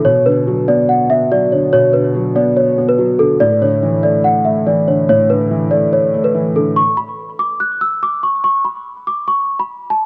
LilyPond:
<<
  \new Staff \with { instrumentName = "Celesta" } { \time 4/4 \key a \mixolydian \tempo 4 = 143 cis''8 b'4 d''8 fis''8 e''8 d''8 cis''8 | cis''8 b'4 d''8 cis''8. b'8. a'8 | d''8 cis''4 d''8 fis''8 e''8 d''8 cis''8 | cis''8 b'4 d''8 cis''8. b'8. a'8 |
cis'''8 b''4 d'''8 fis'''8 e'''8 d'''8 cis'''8 | cis'''8 b''4 d'''8 cis'''8. b''8. a''8 | }
  \new Staff \with { instrumentName = "Felt piano" } { \clef bass \time 4/4 \key a \mixolydian b,8 d8 fis8 b4 b8 fis8 d8 | b,8 d8 fis8 b4 b8 fis8 d8 | a,8 d8 e8 a4 a8 e8 d8 | a,8 d8 e8 a4 a8 e8 d8 |
r1 | r1 | }
>>